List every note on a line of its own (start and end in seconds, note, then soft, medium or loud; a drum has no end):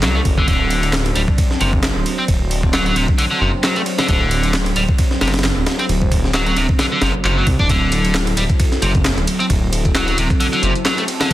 0.00 0.20 C2 medium
0.00 11.33 F#3 medium
0.00 0.15 F#3 medium
0.00 11.33 C4 medium
0.00 7.66 D4 medium
0.00 0.46 A4 medium
0.00 snare loud
0.00 clap loud
0.00 ride medium
0.15 0.20 A3 loud
0.25 0.42 F#1 medium
0.25 kick medium
0.25 ride medium
0.38 0.47 D3 medium
0.38 kick medium
0.48 1.11 D1 loud
0.48 0.92 D3 medium
0.48 7.68 C5 medium
0.48 kick loud
0.48 ride medium
0.70 ride medium
0.83 ride soft
0.93 snare loud
0.93 clap loud
0.93 ride medium
1.06 ride soft
1.16 1.25 D1 medium
1.16 1.21 G3 medium
1.16 ride medium
1.28 kick medium
1.38 kick loud
1.38 ride medium
1.51 snare soft
1.61 1.91 F#1 medium
1.61 1.70 C3 medium
1.61 ride medium
1.73 kick loud
1.83 snare loud
1.83 clap loud
1.83 ride medium
1.96 2.03 D1 medium
2.06 ride medium
2.18 2.23 C4 loud
2.28 2.92 D1 loud
2.28 kick loud
2.28 ride medium
2.51 ride medium
2.63 kick medium
2.73 2.85 F#3 medium
2.73 snare loud
2.73 clap loud
2.73 ride medium
2.86 2.95 F#3 medium
2.86 ride soft
2.96 3.05 D1 medium
2.96 3.06 C3 medium
2.96 ride medium
3.08 kick medium
3.18 3.24 D3 loud
3.18 ride medium
3.31 3.40 D3 loud
3.41 3.50 F#1 medium
3.41 3.50 C3 loud
3.63 3.75 F#3 medium
3.63 snare loud
3.63 clap loud
3.63 ride medium
3.76 3.81 A3 loud
3.76 ride soft
3.86 ride medium
3.98 4.07 D3 medium
3.98 snare loud
3.98 ride medium
4.08 4.72 D1 loud
4.08 4.53 D3 medium
4.08 kick loud
4.08 ride medium
4.31 ride medium
4.43 ride soft
4.53 snare loud
4.53 clap loud
4.53 ride medium
4.66 ride soft
4.76 4.86 D1 medium
4.76 4.82 G3 medium
4.76 ride medium
4.89 kick loud
4.98 kick loud
4.98 ride medium
5.11 snare soft
5.21 5.51 F#1 medium
5.21 5.31 C3 medium
5.21 snare medium
5.21 ride medium
5.28 snare medium
5.28 ride medium
5.34 snare medium
5.34 ride medium
5.39 snare medium
5.39 ride medium
5.44 snare loud
5.44 clap loud
5.44 ride medium
5.57 5.64 D1 medium
5.66 snare loud
5.66 ride medium
5.79 5.84 C4 loud
5.79 ride soft
5.89 6.53 D1 loud
5.89 ride medium
6.02 kick medium
6.12 kick loud
6.12 ride medium
6.24 snare soft
6.34 6.46 F#3 medium
6.34 snare loud
6.34 clap loud
6.34 ride medium
6.46 6.56 F#3 medium
6.46 ride soft
6.57 6.66 D1 medium
6.57 6.66 C3 medium
6.57 ride medium
6.69 kick medium
6.79 6.85 D3 loud
6.79 snare loud
6.79 ride medium
6.92 7.01 D3 loud
7.02 7.11 F#1 medium
7.02 7.12 C3 medium
7.02 snare loud
7.02 ride medium
7.14 7.22 F#1 soft
7.24 7.42 F#1 medium
7.24 7.36 C3 loud
7.24 clap loud
7.37 7.46 F#3 medium
7.47 7.56 C2 medium
7.47 kick medium
7.47 ride medium
7.59 7.67 D1 medium
7.59 7.67 D4 medium
7.59 kick loud
7.69 8.33 D1 medium
7.69 8.14 D3 medium
7.69 11.33 E4 medium
7.69 11.33 A4 medium
7.69 kick loud
7.69 closed hi-hat soft
7.69 ride medium
7.92 closed hi-hat medium
7.92 ride medium
8.05 closed hi-hat soft
8.05 ride soft
8.14 snare loud
8.14 clap loud
8.14 closed hi-hat soft
8.14 ride medium
8.27 ride soft
8.37 8.46 D1 medium
8.37 8.43 G3 medium
8.37 closed hi-hat medium
8.37 ride medium
8.50 kick medium
8.50 closed hi-hat soft
8.60 kick loud
8.60 closed hi-hat soft
8.60 ride medium
8.72 snare soft
8.72 closed hi-hat soft
8.82 9.12 F#1 medium
8.82 8.92 C3 medium
8.82 closed hi-hat medium
8.82 ride medium
8.95 kick medium
8.95 closed hi-hat soft
9.05 snare loud
9.05 clap loud
9.05 closed hi-hat soft
9.05 ride medium
9.17 9.25 D1 medium
9.17 closed hi-hat soft
9.27 closed hi-hat medium
9.27 ride medium
9.40 9.45 C4 loud
9.40 closed hi-hat soft
9.50 10.13 D1 medium
9.50 kick loud
9.50 closed hi-hat soft
9.50 ride medium
9.73 closed hi-hat medium
9.73 ride medium
9.85 kick medium
9.85 closed hi-hat soft
9.95 10.06 F#3 medium
9.95 snare loud
9.95 clap loud
9.95 closed hi-hat soft
9.95 ride medium
10.08 10.17 F#3 medium
10.08 closed hi-hat soft
10.08 ride soft
10.18 10.27 D1 medium
10.18 10.27 C3 medium
10.18 closed hi-hat medium
10.18 ride medium
10.30 kick loud
10.30 closed hi-hat soft
10.40 10.46 D3 loud
10.40 closed hi-hat soft
10.40 ride medium
10.53 10.62 D3 loud
10.53 closed hi-hat soft
10.63 10.72 F#1 medium
10.63 10.73 C3 loud
10.63 closed hi-hat medium
10.76 closed hi-hat soft
10.85 10.97 F#3 medium
10.85 snare loud
10.85 clap loud
10.85 closed hi-hat soft
10.85 ride medium
10.98 11.03 A3 loud
10.98 closed hi-hat soft
10.98 ride soft
11.08 closed hi-hat medium
11.08 ride medium
11.21 11.29 D3 medium
11.21 snare loud
11.21 closed hi-hat soft
11.21 ride medium